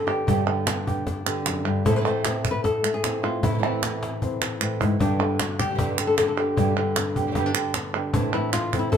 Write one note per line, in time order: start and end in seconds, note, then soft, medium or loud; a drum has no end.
0.00 0.25 G2 medium
0.00 0.45 D3 medium
0.00 0.25 B3 soft
0.07 0.27 D3 soft
0.07 0.27 G3 soft
0.07 0.27 B3 soft
0.07 0.86 G4 medium
0.07 0.27 G4 medium
0.27 1.45 G2 medium
0.27 0.47 G2 medium
0.27 0.47 B2 medium
0.27 0.47 D3 medium
0.27 0.47 G3 medium
0.27 0.46 B3 medium
0.27 0.46 G4 medium
0.27 cajon bass loud
0.46 1.25 D3 medium
0.46 0.66 D3 soft
0.46 0.66 G3 soft
0.46 0.66 B3 soft
0.46 0.66 G4 soft
0.67 0.86 D3 soft
0.67 0.86 G3 soft
0.67 1.83 B3 medium
0.67 0.86 B3 soft
0.67 0.86 G4 medium
0.67 cajon slap loud
0.67 clap medium
0.87 1.05 D3 soft
0.87 1.05 G3 soft
0.87 1.05 B3 soft
0.87 1.06 G4 soft
0.87 1.83 G4 soft
0.87 cajon bass medium
1.06 1.83 D4 medium
1.06 muted nylon-string guitar stroke medium
1.06 cajon bass loud
1.06 cajon slap soft
1.26 1.85 D3 medium
1.26 1.65 D3 soft
1.26 1.65 G3 soft
1.26 1.65 B3 soft
1.26 1.64 G4 medium
1.26 clap medium
1.46 1.65 F#2 medium
1.46 cajon slap medium
1.46 clap medium
1.65 1.85 G2 medium
1.65 1.85 D3 soft
1.65 1.85 G3 soft
1.65 1.85 B3 soft
1.65 1.85 G4 medium
1.85 3.42 A2 medium
1.85 2.04 A2 medium
1.85 1.90 E3 medium
1.85 2.05 A3 soft
1.85 1.91 A3 medium
1.85 3.41 C4 medium
1.85 1.91 C4 medium
1.85 1.91 E4 medium
1.85 1.96 A4 loud
1.85 cajon bass loud
1.91 1.95 E3 soft
1.91 1.95 A3 soft
1.91 1.96 C4 soft
1.91 1.96 E4 medium
1.96 1.99 E3 medium
1.96 2.00 A3 medium
1.96 2.00 C4 medium
1.96 2.00 E4 medium
1.96 2.07 B4 loud
2.00 2.04 E3 medium
2.00 2.04 A3 medium
2.00 2.05 C4 medium
2.00 2.05 E4 medium
2.05 2.24 A2 medium
2.05 2.24 E3 medium
2.05 2.83 A3 medium
2.05 2.24 A3 medium
2.05 2.24 C4 medium
2.05 2.23 E4 medium
2.05 2.26 C5 loud
2.25 2.64 A3 soft
2.25 2.64 C4 soft
2.25 2.63 E4 soft
2.25 2.51 A4 loud
2.25 cajon slap loud
2.25 clap medium
2.45 cajon bass medium
2.45 clap medium
2.51 2.64 B4 loud
2.64 2.94 A4 loud
2.64 muted nylon-string guitar stroke medium
2.64 cajon bass medium
2.64 cajon slap soft
2.84 3.41 A3 medium
2.84 clap medium
2.94 3.43 G#4 loud
3.03 3.22 E3 soft
3.03 3.23 A3 medium
3.03 3.23 C4 medium
3.03 3.22 E4 medium
3.03 cajon slap medium
3.03 clap medium
3.23 3.42 A3 soft
3.23 3.42 C4 soft
3.23 3.42 E4 medium
3.23 3.43 F4 loud
3.43 3.62 A2 medium
3.43 4.60 A2 medium
3.43 3.48 E3 medium
3.43 3.49 A3 medium
3.43 3.49 C4 medium
3.43 3.62 E4 medium
3.43 3.49 E4 medium
3.43 cajon bass loud
3.50 3.53 E3 soft
3.50 3.53 A3 soft
3.50 3.54 C4 medium
3.50 3.54 E4 soft
3.54 3.57 E3 medium
3.54 3.57 A3 medium
3.54 3.58 C4 medium
3.54 3.58 E4 medium
3.58 3.62 E3 medium
3.58 3.62 A3 medium
3.58 3.63 C4 medium
3.58 3.63 E4 medium
3.63 3.82 A2 medium
3.63 4.41 E3 medium
3.63 3.82 E3 medium
3.63 3.82 A3 medium
3.63 3.82 C4 medium
3.63 5.01 E4 loud
3.63 3.81 E4 medium
3.63 cajon slap soft
3.82 4.21 A3 soft
3.82 4.21 C4 soft
3.82 4.21 E4 medium
3.82 cajon slap loud
3.82 clap medium
4.03 cajon slap loud
4.22 4.98 C4 medium
4.22 muted nylon-string guitar stroke soft
4.22 cajon bass medium
4.42 4.98 E3 medium
4.42 cajon slap loud
4.42 clap medium
4.61 4.80 A2 medium
4.61 4.80 E3 medium
4.61 4.80 A3 medium
4.61 4.80 C4 medium
4.61 4.79 E4 medium
4.61 clap medium
4.80 4.99 G#2 medium
4.80 5.00 A3 soft
4.80 5.00 C4 soft
4.80 4.99 E4 medium
4.80 cajon bass medium
4.99 6.54 G2 medium
4.99 5.19 G2 medium
4.99 5.19 B2 medium
4.99 5.19 D3 medium
4.99 5.19 G3 medium
4.99 5.20 B3 medium
4.99 5.59 D4 medium
4.99 5.19 G4 medium
4.99 cajon bass loud
5.19 5.97 D3 medium
5.19 5.39 D3 soft
5.19 5.39 G3 soft
5.19 5.39 B3 soft
5.19 5.39 E4 medium
5.19 5.39 G4 soft
5.39 5.59 F#4 medium
5.39 muted nylon-string guitar stroke medium
5.39 cajon slap loud
5.39 clap medium
5.59 5.69 D3 soft
5.59 5.70 G3 soft
5.59 5.70 B3 soft
5.59 6.07 G4 loud
5.59 5.70 G4 soft
5.59 cajon bass medium
5.59 clap medium
5.70 5.73 B2 soft
5.70 5.74 D3 soft
5.70 5.74 G3 soft
5.70 5.74 B3 soft
5.70 5.75 G4 soft
5.75 5.78 B2 medium
5.75 5.79 D3 medium
5.75 5.79 G3 medium
5.75 5.79 B3 medium
5.75 5.79 G4 medium
5.75 cajon bass loud
5.79 5.98 G2 medium
5.79 5.98 B2 medium
5.79 5.98 D3 medium
5.79 5.98 G3 medium
5.79 5.98 B3 medium
5.79 6.55 D4 soft
5.79 5.97 G4 medium
5.98 6.76 D3 medium
5.98 6.17 D3 soft
5.98 6.17 G3 soft
5.98 6.17 B3 soft
5.98 6.17 G4 soft
5.98 cajon slap soft
5.98 clap loud
6.07 6.16 A4 medium
6.17 6.22 A4 loud
6.17 muted nylon-string guitar stroke medium
6.17 cajon slap loud
6.17 clap medium
6.23 6.28 G4 medium
6.28 6.37 A4 medium
6.37 6.56 D3 soft
6.37 6.57 G3 medium
6.37 6.57 B3 soft
6.37 7.16 G4 medium
6.37 6.56 G4 medium
6.57 8.11 G2 medium
6.57 6.76 G2 medium
6.57 6.76 B2 medium
6.57 6.76 D3 medium
6.57 6.76 G3 medium
6.57 6.76 B3 medium
6.57 6.76 G4 medium
6.57 cajon bass loud
6.77 7.53 D3 medium
6.77 6.96 D3 soft
6.77 6.96 G3 soft
6.77 6.96 B3 soft
6.77 6.96 G4 soft
6.96 7.34 B3 soft
6.96 muted nylon-string guitar stroke medium
6.96 cajon slap loud
6.96 clap medium
7.16 7.26 D3 soft
7.16 7.26 G3 soft
7.16 7.27 B3 soft
7.16 7.27 G4 soft
7.16 8.12 G4 soft
7.16 cajon bass medium
7.27 7.30 B2 soft
7.27 7.31 D3 soft
7.27 7.31 G3 soft
7.27 7.31 B3 soft
7.27 7.31 G4 medium
7.31 7.35 B2 medium
7.31 7.35 D3 medium
7.31 7.35 G3 medium
7.31 7.35 B3 medium
7.31 7.46 B3 soft
7.31 7.36 G4 medium
7.31 cajon bass loud
7.31 cajon slap soft
7.36 7.55 G2 medium
7.36 7.55 B2 medium
7.36 7.55 D3 medium
7.36 7.55 G3 medium
7.36 7.55 B3 medium
7.36 7.54 G4 medium
7.46 7.94 D4 soft
7.54 8.14 D3 medium
7.54 7.74 D3 soft
7.54 7.75 G3 soft
7.54 7.74 B3 soft
7.54 7.74 G4 medium
7.54 cajon slap soft
7.54 clap loud
7.74 8.12 B3 soft
7.74 muted nylon-string guitar stroke medium
7.74 cajon slap loud
7.74 clap medium
7.94 8.14 D3 soft
7.94 8.14 G3 soft
7.94 8.13 B3 medium
7.94 8.12 D4 medium
7.94 8.13 G4 medium
8.14 8.33 A2 medium
8.14 8.97 A2 medium
8.14 8.33 E3 medium
8.14 8.33 A3 medium
8.14 8.33 C4 medium
8.14 8.73 D4 medium
8.14 8.33 E4 medium
8.14 cajon bass loud
8.34 8.97 E3 medium
8.34 8.52 A3 soft
8.34 8.53 C4 soft
8.34 8.53 E4 loud
8.34 8.53 E4 soft
8.53 8.79 F4 loud
8.53 muted nylon-string guitar stroke medium
8.53 cajon slap loud
8.53 clap medium
8.73 8.92 A3 soft
8.73 8.97 C4 soft
8.73 8.92 C4 soft
8.73 8.92 E4 soft
8.73 cajon bass medium
8.73 clap medium
8.79 8.91 E4 loud
8.92 8.97 A2 medium
8.92 8.97 E3 medium
8.92 8.97 A3 medium
8.92 8.97 C4 medium
8.92 8.97 E4 medium
8.92 8.97 A4 loud
8.92 cajon bass loud
8.92 cajon slap soft